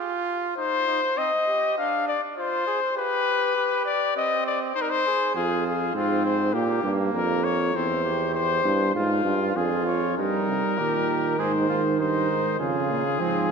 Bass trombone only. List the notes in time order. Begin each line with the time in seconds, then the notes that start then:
5.35 F2
5.94 G#2
6.53 A#2
6.83 G2
7.13 F2
7.73 E2
8.64 G2
8.95 G#2
9.25 G2
9.55 F2
10.17 G2
10.47 C3
10.78 A#2
11.39 G#2
11.69 G#2
11.99 G2
12.29 G#2
12.59 F2
12.89 A#2
13.20 G#2